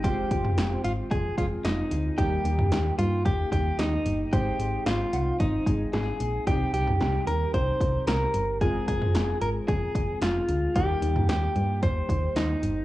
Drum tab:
HH |x-x-x-x-x-x-x-x-|x-x-x-x-x-x-x-x-|x-x-x-x-x-x-x-x-|x-x-x-x-x-x-x-x-|
CB |----------------|----------------|------x---------|----------------|
SD |----o-------o---|----o-------o---|----o-------o---|----o-------o---|
T2 |---o------------|---o------------|----------------|---o------------|
BD |o-o-----o-o-----|o-------o-o-----|o-------o-o-----|o-------o-o-----|

HH |x-x-x-x-x-x-x-x-|x-x-x-x-x-x-x-x-|
CB |----------------|----------------|
SD |----o-------o---|----o-------o---|
T2 |---o------------|---o------------|
BD |o-o-----o-o-----|o-------o-o-----|